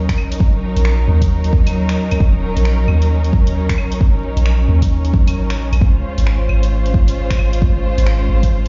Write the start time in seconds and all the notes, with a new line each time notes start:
Already playing: D#2 F#3 C#4 D#4 A#4
0.09 finger snap, kick, closed hi-hat
0.18 A#1, claves
0.32 closed hi-hat
0.40 kick
0.76 A#1, closed hi-hat
0.85 finger snap
1.08 D#2
1.22 kick, closed hi-hat
1.44 closed hi-hat
1.53 kick
1.67 closed hi-hat, claves
1.89 finger snap, closed hi-hat
2.11 C#2, closed hi-hat, claves
2.20 D#1, kick
2.56 A#1, closed hi-hat
2.65 finger snap
2.88 D#2, claves
3.02 closed hi-hat
3.24 closed hi-hat
3.33 kick
3.47 closed hi-hat
3.69 finger snap, kick, closed hi-hat
3.78 A#1, claves
3.92 closed hi-hat
4.01 kick
4.37 A#1, closed hi-hat
4.46 finger snap
4.68 D#2
4.82 kick, closed hi-hat
5.05 closed hi-hat
5.14 kick
5.27 closed hi-hat, claves
5.36 G#1
5.50 finger snap, closed hi-hat
5.59 A#1
5.72 A#1, closed hi-hat, claves
5.81 C#2 G#3 F4 C5, kick
6.18 G#1, closed hi-hat
6.27 finger snap
6.49 G#1, claves
6.63 closed hi-hat
6.86 closed hi-hat
6.94 kick
7.08 closed hi-hat
7.30 finger snap, kick, closed hi-hat
7.39 G#1, claves
7.53 closed hi-hat
7.62 kick
7.98 G#1, closed hi-hat
8.07 finger snap
8.29 G#1
8.43 kick, closed hi-hat